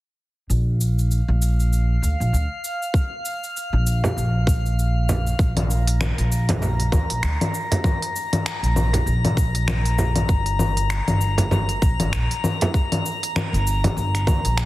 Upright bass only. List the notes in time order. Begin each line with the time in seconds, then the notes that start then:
0.50 A#1
1.28 A#1
2.02 D2
2.20 A#1
2.33 D2
3.73 A#1
4.17 A#1
5.39 A#1
6.18 A#1
6.92 D2
7.10 A#1
7.23 D2
8.63 A#1
9.06 A#1
10.29 G1
11.08 G1
11.82 A#1
12.00 G1
12.13 A#1
13.53 G1
13.97 G1
14.27 D2
14.45 A#1